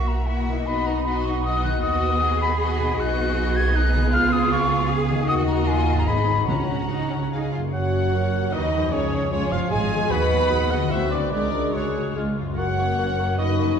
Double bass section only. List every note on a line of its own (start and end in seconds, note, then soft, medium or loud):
0.00 0.62 B1 soft
0.66 1.79 B1 medium
1.82 2.94 D#2 medium
2.96 4.08 B1 medium
4.11 5.26 C#2 medium
5.28 6.06 D#2 medium
6.06 6.48 G#1 medium
6.48 7.50 C#2 medium
7.73 8.49 F#1 medium
8.53 8.92 D#2 medium
8.93 9.31 C#2 soft
9.32 9.40 C#2 medium
9.52 9.60 F1 medium
9.72 10.10 G#1 medium
10.11 10.46 D#2 medium
10.51 10.87 D#2 medium
10.91 11.27 D2 medium
11.32 11.69 C#2 soft
11.74 12.11 C#2 soft
12.16 12.53 C#2 medium
12.58 12.94 F#1 soft
12.99 13.34 F#1 medium
13.38 13.74 F#1 medium